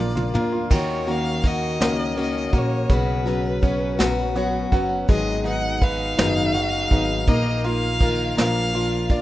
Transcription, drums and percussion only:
0.17 mid tom medium
0.35 mid tom medium
0.71 kick loud
0.71 crash medium
1.08 closed hi-hat soft
1.44 kick medium
1.44 closed hi-hat soft
1.81 snare loud
1.81 closed hi-hat medium
2.17 closed hi-hat medium
2.53 kick medium
2.53 closed hi-hat medium
2.90 kick loud
2.90 closed hi-hat medium
3.26 closed hi-hat soft
3.63 kick medium
3.63 closed hi-hat medium
3.99 snare medium
3.99 closed hi-hat medium
4.36 closed hi-hat medium
4.72 kick medium
4.72 closed hi-hat medium
5.09 kick loud
5.09 closed hi-hat medium
5.45 closed hi-hat soft
5.81 kick medium
5.81 closed hi-hat soft
6.18 snare loud
6.18 closed hi-hat medium
6.54 closed hi-hat medium
6.90 kick medium
6.90 closed hi-hat medium
7.27 kick loud
7.27 closed hi-hat medium
7.64 closed hi-hat soft
8.00 kick medium
8.00 closed hi-hat medium
8.38 snare medium
8.38 closed hi-hat medium
8.73 closed hi-hat medium
9.09 kick medium
9.09 closed hi-hat medium

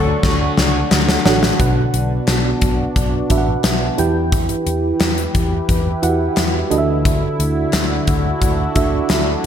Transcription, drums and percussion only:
0.23 kick medium
0.23 snare medium
0.57 snare medium
0.91 snare loud
0.91 clap medium
1.09 snare medium
1.26 snare loud
1.43 snare loud
1.60 kick medium
1.60 closed hi-hat medium
1.94 closed hi-hat medium
2.27 snare loud
2.27 clap medium
2.27 closed hi-hat medium
2.61 kick medium
2.61 closed hi-hat medium
2.96 kick medium
2.96 closed hi-hat medium
3.30 kick medium
3.30 closed hi-hat medium
3.64 snare loud
3.64 clap medium
3.64 closed hi-hat medium
3.98 closed hi-hat medium
4.32 kick loud
4.32 closed hi-hat medium
4.49 closed hi-hat medium
4.67 closed hi-hat medium
5.00 snare loud
5.00 clap medium
5.00 closed hi-hat medium
5.18 closed hi-hat medium
5.35 kick medium
5.35 closed hi-hat medium
5.69 kick medium
5.69 closed hi-hat medium
6.03 closed hi-hat medium
6.37 snare loud
6.37 clap medium
6.37 closed hi-hat medium
6.71 closed hi-hat medium
7.05 kick loud
7.05 closed hi-hat medium
7.40 closed hi-hat medium
7.73 snare loud
7.73 clap medium
7.73 closed hi-hat medium
8.07 kick medium
8.07 closed hi-hat medium
8.42 kick medium
8.42 closed hi-hat medium
8.76 kick medium
8.76 closed hi-hat medium
9.10 snare loud
9.10 clap medium
9.10 closed hi-hat medium

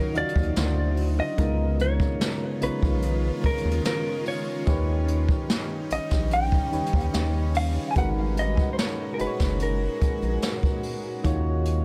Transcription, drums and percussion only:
0.15 closed hi-hat soft
0.29 closed hi-hat soft
0.36 kick medium
0.42 closed hi-hat medium
0.56 snare loud
0.56 closed hi-hat medium
0.97 open hi-hat medium
1.38 kick loud
1.38 closed hi-hat medium
1.79 closed hi-hat medium
2.00 kick loud
2.21 snare loud
2.21 closed hi-hat medium
2.62 closed hi-hat medium
2.83 kick medium
3.02 closed hi-hat medium
3.44 kick medium
3.44 closed hi-hat medium
3.58 closed hi-hat soft
3.71 closed hi-hat medium
3.85 snare loud
3.85 closed hi-hat medium
4.26 open hi-hat medium
4.67 kick loud
4.67 closed hi-hat medium
5.08 closed hi-hat medium
5.29 kick medium
5.49 snare loud
5.49 closed hi-hat medium
5.90 closed hi-hat medium
6.11 kick medium
6.11 snare medium
6.31 closed hi-hat medium
6.52 kick medium
6.73 closed hi-hat soft
6.86 closed hi-hat soft
6.93 kick medium
7.00 closed hi-hat medium
7.14 snare loud
7.14 closed hi-hat medium
7.55 open hi-hat medium
7.96 kick loud
7.96 closed hi-hat medium
8.37 closed hi-hat medium
8.57 kick medium
8.78 snare loud
8.78 closed hi-hat medium
9.19 closed hi-hat medium
9.40 kick medium
9.40 snare medium
9.60 closed hi-hat medium
10.01 kick medium
10.01 closed hi-hat medium
10.22 closed hi-hat soft
10.42 snare loud
10.42 closed hi-hat medium
10.63 kick medium
10.83 open hi-hat medium
11.24 kick loud
11.24 closed hi-hat medium
11.65 closed hi-hat medium

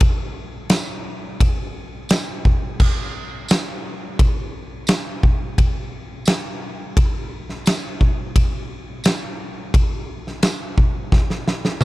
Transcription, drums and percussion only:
0.00 kick loud
0.00 ride bell medium
0.70 snare loud
0.70 ride bell medium
0.70 tambourine medium
1.40 kick loud
1.40 ride bell medium
2.09 snare loud
2.09 ride bell medium
2.09 tambourine medium
2.45 kick loud
2.80 kick loud
2.80 crash medium
3.48 snare loud
3.48 ride bell medium
3.48 tambourine loud
4.19 kick loud
4.19 ride bell medium
4.87 snare loud
4.87 ride bell medium
4.87 tambourine medium
5.23 kick medium
5.58 kick loud
5.58 ride bell medium
6.25 snare loud
6.25 ride bell medium
6.25 tambourine loud
6.97 kick loud
6.97 ride bell medium
7.49 snare soft
7.66 snare loud
7.66 ride bell medium
7.66 tambourine medium
8.01 kick medium
8.36 kick loud
8.36 ride bell medium
9.04 snare loud
9.04 ride bell medium
9.04 tambourine medium
9.74 kick loud
9.74 ride bell medium
10.27 snare soft
10.43 snare loud
10.43 ride bell medium
10.43 tambourine loud
10.78 kick medium
11.12 kick loud
11.12 snare medium
11.30 snare medium
11.48 snare medium
11.65 snare medium
11.81 high tom medium

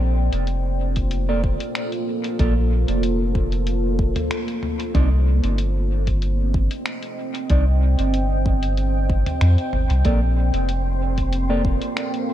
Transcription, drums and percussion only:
0.33 closed hi-hat soft
0.47 closed hi-hat soft
0.96 kick medium
0.96 closed hi-hat soft
1.11 closed hi-hat soft
1.44 kick medium
1.60 closed hi-hat soft
1.75 finger snap medium
1.75 closed hi-hat soft
1.92 closed hi-hat soft
2.24 closed hi-hat soft
2.39 kick loud
2.39 closed hi-hat soft
2.88 closed hi-hat soft
3.03 closed hi-hat soft
3.35 kick loud
3.52 closed hi-hat soft
3.67 closed hi-hat soft
3.99 kick loud
4.16 closed hi-hat soft
4.16 mid tom medium
4.31 finger snap medium
4.31 closed hi-hat medium
4.48 closed hi-hat soft
4.63 mid tom medium
4.80 closed hi-hat soft
4.95 kick loud
4.95 closed hi-hat soft
5.44 closed hi-hat soft
5.58 closed hi-hat medium
6.07 kick medium
6.07 closed hi-hat soft
6.22 closed hi-hat soft
6.54 kick loud
6.71 closed hi-hat soft
6.86 finger snap medium
6.86 closed hi-hat medium
7.03 closed hi-hat soft
7.35 closed hi-hat soft
7.50 kick loud
7.50 closed hi-hat soft
7.99 closed hi-hat soft
8.14 closed hi-hat soft
8.46 kick loud
8.63 closed hi-hat soft
8.77 closed hi-hat soft
9.10 kick loud
9.26 closed hi-hat soft
9.26 mid tom medium
9.41 finger snap medium
9.41 closed hi-hat soft
9.58 closed hi-hat soft
9.73 mid tom medium
9.90 closed hi-hat soft
10.05 kick loud
10.05 closed hi-hat soft
10.54 closed hi-hat soft
10.69 closed hi-hat soft
11.18 kick medium
11.18 closed hi-hat soft
11.33 closed hi-hat soft
11.65 kick loud
11.82 closed hi-hat soft
11.97 finger snap medium
11.97 closed hi-hat soft
12.14 closed hi-hat soft

